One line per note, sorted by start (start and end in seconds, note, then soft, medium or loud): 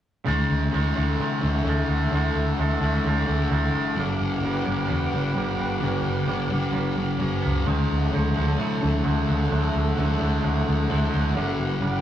0.25 0.44 D2 medium
0.25 1.00 D3 medium
0.25 0.72 D3 medium
0.25 0.71 E3 medium
0.25 0.72 A3 medium
0.25 0.73 A3 medium
0.25 0.73 D4 medium
0.25 0.73 E4 medium
0.25 0.74 F#4 medium
0.25 3.93 A4 medium
0.25 3.93 E5 medium
0.25 3.93 F#5 medium
0.25 11.31 D6 medium
0.50 0.67 D2 medium
0.71 0.91 D2 medium
0.71 1.63 D3 medium
0.71 1.20 E3 medium
0.71 0.99 A3 medium
0.71 0.97 A3 medium
0.71 0.95 D4 medium
0.71 0.97 E4 medium
0.71 0.95 F#4 medium
0.95 1.14 D2 medium
0.95 1.42 A3 medium
0.95 1.20 A3 medium
0.95 1.40 D4 medium
0.95 1.21 E4 medium
0.95 1.22 F#4 medium
1.19 1.89 D3 medium
1.19 1.65 E3 medium
1.19 1.66 A3 medium
1.19 1.67 E4 medium
1.19 1.69 F#4 medium
1.41 1.60 D2 medium
1.41 1.63 A3 medium
1.41 1.65 D4 medium
1.63 1.82 D2 medium
1.63 2.09 D3 medium
1.63 2.11 E3 medium
1.63 2.09 A3 medium
1.63 2.11 D4 loud
1.67 1.90 A3 medium
1.67 1.89 E4 medium
1.67 1.88 F#4 medium
1.88 2.06 D2 medium
1.88 2.13 A3 medium
1.88 2.13 E4 medium
1.88 2.14 F#4 medium
2.10 2.29 D2 medium
2.10 2.55 D3 loud
2.10 2.82 D3 medium
2.10 2.56 E3 medium
2.10 2.58 A3 medium
2.10 2.59 D4 loud
2.15 2.59 E4 medium
2.15 2.60 F#4 medium
2.35 2.52 D2 medium
2.57 2.76 D2 medium
2.57 3.04 D3 medium
2.57 3.03 E3 medium
2.57 2.82 A3 medium
2.57 2.84 A3 medium
2.57 2.80 D4 medium
2.57 2.83 E4 medium
2.61 2.81 F#4 medium
2.81 2.98 D2 medium
2.81 3.27 A3 medium
2.81 3.26 D4 medium
2.81 3.05 E4 medium
2.81 3.07 F#4 medium
2.85 3.05 A3 soft
3.04 3.22 D2 medium
3.04 3.74 D3 medium
3.04 3.48 E3 medium
3.04 3.50 A3 medium
3.04 3.51 E4 medium
3.04 3.52 F#4 medium
3.26 3.46 D2 medium
3.26 3.49 A3 medium
3.26 3.51 D4 medium
3.49 3.68 D2 medium
3.49 3.95 D3 medium
3.49 3.95 E3 medium
3.49 3.96 A3 medium
3.49 3.76 A3 medium
3.49 7.01 D4 medium
3.49 3.74 E4 medium
3.49 3.74 F#4 medium
3.74 3.98 A3 medium
3.74 3.97 E4 medium
3.74 4.00 F#4 medium
3.96 4.14 G1 medium
3.96 4.41 G2 loud
3.96 4.87 G2 medium
3.96 4.42 D3 medium
3.96 4.41 D3 medium
3.96 4.44 G3 loud
3.96 7.63 B4 medium
3.96 7.63 F#5 medium
3.96 7.63 G5 medium
4.00 4.45 B3 loud
4.00 4.45 D4 medium
4.20 4.38 G1 medium
4.42 4.61 G1 medium
4.42 5.34 G2 medium
4.42 4.87 D3 medium
4.42 4.67 D3 medium
4.42 4.65 G3 medium
4.42 4.67 B3 medium
4.42 4.65 D4 medium
4.65 4.84 G1 medium
4.65 5.14 D3 medium
4.65 5.12 G3 medium
4.65 4.89 B3 medium
4.65 4.90 D4 medium
4.87 5.08 E2 medium
4.87 5.58 G2 medium
4.87 5.33 D3 medium
4.87 5.35 B3 medium
4.87 5.37 D4 medium
5.13 5.30 G1 medium
5.13 5.35 D3 soft
5.13 5.36 G3 medium
5.34 5.54 G1 medium
5.34 5.80 G2 medium
5.34 5.81 D3 medium
5.34 5.80 D3 medium
5.34 5.82 G3 medium
5.34 5.58 B3 medium
5.34 5.57 D4 medium
5.57 5.77 G1 medium
5.57 5.82 B3 medium
5.57 5.83 D4 medium
5.80 6.00 G1 medium
5.80 6.51 G2 medium
5.80 6.26 G2 loud
5.80 6.28 D3 loud
5.80 6.25 D3 medium
5.80 6.28 G3 medium
5.80 6.27 B3 medium
5.80 6.29 D4 medium
6.06 6.23 G1 medium
6.26 6.46 G1 medium
6.26 6.74 G2 medium
6.26 6.72 D3 medium
6.26 6.51 D3 medium
6.26 6.50 G3 medium
6.26 6.51 B3 medium
6.26 6.49 D4 medium
6.50 6.69 G1 medium
6.50 6.97 D3 medium
6.50 6.95 G3 medium
6.50 6.73 B3 medium
6.50 6.75 D4 medium
6.72 6.92 G1 medium
6.72 7.43 G2 medium
6.72 7.17 D3 medium
6.72 7.20 B3 medium
6.72 7.22 D4 medium
6.97 7.15 G1 medium
6.97 7.18 D3 medium
6.97 7.19 G3 medium
7.18 7.38 G1 medium
7.18 7.64 G2 medium
7.18 7.64 D3 medium
7.18 7.65 G3 loud
7.18 7.43 B3 medium
7.18 7.42 D4 medium
7.42 7.62 C#2 medium
7.42 7.66 F#3 medium
7.42 7.66 B3 medium
7.42 7.68 D4 medium
7.65 7.85 D2 medium
7.65 8.11 D3 medium
7.65 8.10 D3 medium
7.65 8.12 F#3 medium
7.65 8.12 A3 loud
7.65 8.13 A3 medium
7.65 8.13 D4 medium
7.65 8.14 E4 medium
7.65 11.32 A4 medium
7.65 11.33 E5 medium
7.65 12.01 F#5 medium
7.91 8.08 D2 medium
8.11 8.56 D3 medium
8.11 9.04 D3 medium
8.11 8.38 F#3 medium
8.11 8.36 A3 medium
8.11 8.37 A3 medium
8.11 8.34 D4 medium
8.11 8.35 E4 medium
8.15 8.32 D2 medium
8.34 8.54 D2 medium
8.34 8.82 A3 medium
8.34 8.58 A3 medium
8.34 8.81 D4 medium
8.34 8.59 E4 medium
8.38 8.58 F#3 medium
8.57 8.77 B2 medium
8.57 9.02 D3 medium
8.57 9.03 F#3 medium
8.57 9.04 A3 medium
8.57 9.05 E4 medium
8.81 9.00 D2 medium
8.81 9.04 A3 soft
8.81 9.06 D4 medium
9.03 9.23 D2 medium
9.03 9.48 D3 medium
9.03 9.49 D3 medium
9.03 9.30 F#3 medium
9.03 9.28 A3 medium
9.03 9.51 A3 medium
9.03 9.52 D4 loud
9.03 9.26 E4 medium
9.27 9.46 D2 medium
9.27 9.50 F#3 medium
9.27 9.51 A3 medium
9.27 9.52 E4 medium
9.50 9.68 D2 medium
9.50 9.96 D3 medium
9.50 9.95 D3 medium
9.50 9.97 F#3 medium
9.50 9.98 A3 medium
9.50 9.97 A3 loud
9.50 9.99 D4 loud
9.50 9.99 E4 medium
9.75 9.92 D2 medium
9.96 10.15 D2 medium
9.96 10.43 D3 medium
9.96 10.40 D3 medium
9.96 10.22 F#3 medium
9.96 10.20 A3 medium
9.96 10.19 D4 medium
10.00 10.17 E4 medium
10.19 10.38 D2 medium
10.19 10.43 F#3 medium
10.19 10.43 A3 medium
10.19 10.66 A3 medium
10.19 10.64 D4 medium
10.19 10.43 E4 medium
10.41 10.61 D2 medium
10.41 10.87 D3 medium
10.41 10.89 F#3 medium
10.41 10.89 A3 medium
10.41 10.91 E4 loud
10.65 10.84 D2 medium
10.65 10.88 A3 medium
10.65 10.90 D4 medium
10.88 11.08 D2 medium
10.88 11.33 D3 medium
10.88 11.34 D3 medium
10.88 11.13 F#3 medium
10.88 11.34 A3 medium
10.88 11.11 A3 medium
10.88 12.01 D4 medium
10.92 11.09 E4 medium
11.10 11.31 D2 medium
11.10 11.37 F#3 medium
11.10 11.34 A3 medium
11.10 11.33 E4 medium
11.34 11.54 G1 medium
11.34 12.01 G2 medium
11.34 11.80 G2 medium
11.34 11.79 D3 medium
11.34 11.82 D3 medium
11.34 11.83 G3 loud
11.34 11.82 B3 loud
11.34 11.83 D4 medium
11.34 12.01 B4 medium
11.34 12.01 G5 medium
11.34 12.01 D6 medium
11.60 11.76 G1 medium
11.80 11.99 G1 loud
11.80 12.01 G2 medium
11.80 12.01 D3 medium
11.80 12.01 G3 medium
11.80 12.01 B3 medium
11.80 12.01 D4 medium